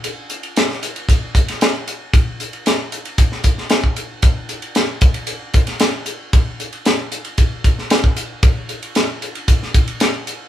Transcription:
\new DrumStaff \with { instrumentName = "Drums" } \drummode { \time 4/4 \tempo 4 = 114 <hhp cymr>8 <hhp cymr>16 cymr16 <hhp cymr sn>16 sn16 <hhp cymr>16 cymr16 <hhp bd cymr>8 <hhp bd cymr>16 <cymr sn>16 <hhp cymr sn>8 <hhp cymr>8 | <hhp bd cymr>8 <hhp cymr>16 cymr16 <hhp cymr sn>8 <hhp cymr>16 cymr16 <hhp bd cymr>16 sn16 <hhp bd cymr>16 sn16 <hhp cymr sn>16 bd16 <hhp cymr>8 | <hhp bd cymr>8 <hhp cymr>16 cymr16 <hhp cymr sn>8 <hhp bd cymr>16 cymr16 <hhp cymr>8 <hhp bd cymr>16 <cymr sn>16 <hhp cymr sn>8 <hhp cymr>8 | <hhp bd cymr>8 <hhp cymr>16 cymr16 <hhp cymr sn>8 <hhp cymr>16 cymr16 <hhp bd cymr>8 <hhp bd cymr>16 sn16 <hhp cymr sn>16 bd16 <hhp cymr>8 |
<hhp bd cymr>8 <hhp cymr>16 cymr16 <hhp cymr sn>8 <hhp cymr>16 cymr16 <hhp bd cymr>16 sn16 <hhp bd cymr>16 cymr16 <hhp cymr sn>8 <hhp cymr>8 | }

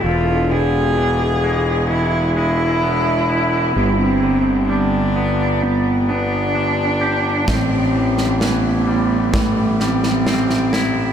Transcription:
<<
  \new Staff \with { instrumentName = "Cello" } { \time 4/4 \key a \minor \tempo 4 = 65 f'8 gis'4. e'8 e'4. | b16 c'8. d'4 b8 d'4. | c'4 b4 a8 c'4. | }
  \new Staff \with { instrumentName = "Clean electric guitar" } { \clef bass \time 4/4 \key a \minor e,8 b,8 e8 gis8 e8 gis8 b8 e'8 | g,8 d8 g8 b8 g8 b8 d'8 g'8 | a,8 e8 e8 g8 e8 g8 c'8 e'8 | }
  \new Staff \with { instrumentName = "Fingered electric bass" } { \clef bass \time 4/4 \key a \minor e,,1 | g,,1 | a,,1 | }
  \new DrumStaff \with { instrumentName = "Drums" } \drummode { \time 4/4 r4 r4 r4 r4 | r4 r4 r4 r4 | <bd sn>8. sn16 sn4 <bd sn>8 sn16 sn16 sn16 sn16 sn8 | }
>>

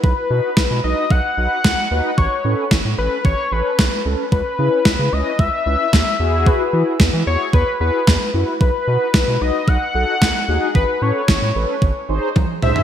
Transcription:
<<
  \new Staff \with { instrumentName = "Analog synth lead" } { \time 4/4 \key b \mixolydian \tempo 4 = 112 b'4. dis''8 fis''2 | cis''4 r8 b'8 cis''8 b'4 r8 | b'4. dis''8 e''2 | b'4 r8 cis''8 b'8 b'4 r8 |
b'4. dis''8 fis''2 | b'8 cis''2 r4 e''8 | }
  \new Staff \with { instrumentName = "Analog polysynth" } { \time 4/4 \key b \mixolydian r8 <dis' fis' b'>8 r8 <dis' fis' b'>8 r8 <dis' fis' b'>8 r8 <dis' fis' b'>8 | r8 <cis' a' b'>8 r8 <cis' a' b'>8 r8 <cis' a' cis''>8 r8 <cis' a' b'>8 | r8 <cis' e' b'>8 r8 <cis' e' b'>8 r8 <cis' e' b'>8 r8 <e' fis' gis'>8~ | <e' fis' gis'>8 <e' fis' gis'>8 r8 <e' fis' gis'>8 r8 <e' fis' gis'>8 r8 <e' fis' b'>8 |
r8 <dis' fis' b'>8 r8 <dis' fis' b'>8 r8 <dis' fis' a'>8 r8 <dis' fis' gis'>8 | r8 <cis' a' b'>8 r8 <cis' a' b'>8 r8 <dis' gis' bis'>8 r8 <dis' gis' bis'>8 | }
  \new Staff \with { instrumentName = "Analog synth bass" } { \clef bass \time 4/4 \key b \mixolydian b,,16 r16 b,16 r16 b,,16 b,16 b,,16 r16 b,,16 r16 b,,16 r16 cis,16 r16 dis,16 r16 | a,,16 r16 a,16 r16 a,,16 a,16 a,,16 r16 a,,16 r16 a,,16 r16 b,,16 r16 cis,16 r16 | cis,16 r16 cis16 r16 cis,16 cis16 cis,16 r16 cis,16 r16 cis,16 r16 dis,16 r16 e,8~ | e,16 r16 e16 r16 e,16 e16 e,16 r16 e,16 r16 e,16 r16 e,16 r16 fis,16 r16 |
b,,16 r16 b,16 r16 b,,16 b,16 b,,16 r16 b,,16 r16 b,,16 r16 cis,16 r16 dis,16 r16 | a,,16 r16 a,16 r16 a,,16 a,16 a,,16 r16 gis,,16 r16 gis,,16 r16 bis,,16 r16 cis,16 r16 | }
  \new DrumStaff \with { instrumentName = "Drums" } \drummode { \time 4/4 bd4 <bd sn>4 bd4 <bd sn>4 | bd4 <bd sn>4 bd4 <bd sn>4 | bd4 <bd sn>4 bd4 <bd sn>4 | bd4 <bd sn>4 bd4 <bd sn>4 |
bd4 <bd sn>4 bd4 <bd sn>4 | bd4 <bd sn>4 bd4 <bd tommh>8 toml16 tomfh16 | }
>>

